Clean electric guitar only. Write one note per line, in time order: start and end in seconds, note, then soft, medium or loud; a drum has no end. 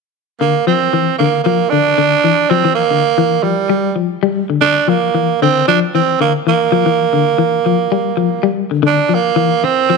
0.41 0.61 D3 medium
0.67 0.87 F3 medium
0.93 1.13 E3 medium
1.20 1.40 D3 medium
1.46 1.66 F3 medium
1.72 1.92 D3 medium
1.98 2.18 D3 medium
2.24 2.44 E3 medium
2.51 2.61 F3 medium
2.65 2.85 E3 medium
2.91 3.11 D3 medium
3.18 3.38 E3 medium
3.43 3.64 F3 medium
3.70 3.90 G3 medium
3.96 4.16 F3 medium
4.23 4.43 G3 medium
4.50 4.59 D3 medium
4.62 4.82 D3 medium
4.88 5.08 F3 medium
5.15 5.35 E3 medium
5.42 5.62 D3 medium
5.68 5.88 F3 medium
5.95 6.15 E3 medium
6.21 6.41 D3 medium
6.47 6.67 E3 medium
6.72 6.83 F3 medium
6.86 7.06 E3 medium
7.13 7.33 D3 medium
7.38 7.59 E3 medium
7.66 7.86 F3 medium
7.92 8.12 G3 medium
8.17 8.38 F3 medium
8.43 8.64 G3 medium
8.71 8.81 D3 medium
8.83 9.03 D3 medium
9.09 9.30 F3 medium
9.36 9.56 E3 medium
9.64 muted clean electric guitar stroke medium
9.90 9.97 F3 medium